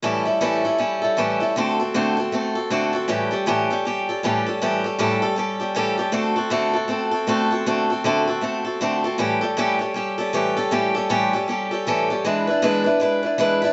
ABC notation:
X:1
M:4/4
L:1/8
Q:"Swing" 1/4=157
K:Amix
V:1 name="Steel-string acoustic guitar"
[A,,E,G,CEA] [G,CEA] [A,,E,G,CEA] [G,CEA] [G,CEA] [G,CEA] [A,,E,G,CEA] [G,CEA] | [D,A,=CFA] [CFA] [D,A,CFA] [CFA] [A,CFA] [CFA] [D,A,CFA] [CFA] | [A,,E,G,CGA] [G,CGA] [A,,E,G,CGA] [G,CGA] [G,CGA] [G,CGA] [A,,E,G,CGA] [G,CGA] | [A,,E,G,CGA] [G,CGA] [A,,E,G,CGA] [G,CGA] [G,CGA] [G,CGA] [A,,E,G,CGA] [G,CGA] |
[D,A,=CFA] [CFA] [D,A,CFA] [CFA] [A,CFA] [CFA] [D,A,CFA] [CFA] | [D,A,=CFA] [CFA] [D,A,CFA] [CFA] [A,CFA] [CFA] [D,A,CFA] [CFA] | [A,,E,G,CGA] [G,CGA] [A,,E,G,CGA] [G,CGA] [G,CGA] [G,CGA] [A,,E,G,CGA] [G,CGA] | [A,,E,G,CGA] [G,CGA] [A,,E,G,CGA] [G,CGA] [G,CGA] [G,CGA] [A,,E,G,CGA] [G,CGA] |
[E,^G,DEB] [DEB] [E,G,DEB] [DEB] [G,DEB] [DEB] [E,G,DEB] [DEB] |]